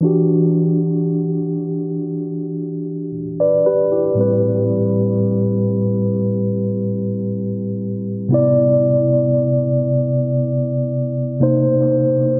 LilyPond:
\new Staff \with { instrumentName = "Tine electric piano" } { \time 4/4 \key e \minor \tempo 4 = 58 << { r2. r16 <b' d''>16 <g' b'>16 <e' g'>16~ | <e' g'>16 r2. r8. | r1 | } \\ { <e d' fis' g'>1 | <a, g c' b'>1 | <c b e' d''>2. <c bes ees' c''>4 | } >> }